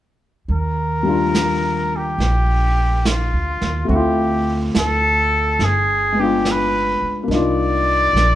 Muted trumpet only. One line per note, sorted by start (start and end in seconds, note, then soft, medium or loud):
0.52 1.98 A#4 medium
1.96 3.08 G4 medium
3.07 3.87 F4 medium
3.89 3.97 F#4 medium
3.96 4.61 G4 medium
4.77 5.65 A4 medium
5.64 6.21 G#4 medium
6.20 6.52 G4 medium
6.51 7.19 B4 medium
7.35 8.35 D5 loud